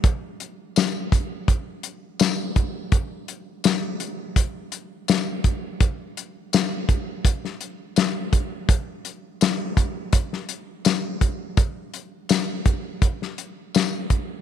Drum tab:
HH |x-x-x-x-x-x-x-x-|x-x-x-x-x-x-x-x-|x-x-x-x-x-x-x-x-|x-x-x-x-x-x-x-x-|
TB |----x-------x---|----x-------x---|----x-------x---|----x-------x---|
SD |----o-------o---|----o-------o---|----o----o--o---|----o----o--o---|
BD |o-----o-o-----o-|o-------o-----o-|o-----o-o-----o-|o-----o-o-----o-|

HH |x-x-x-x-x-x-x-x-|
TB |----x-------x---|
SD |----o----o--o---|
BD |o-----o-o-----o-|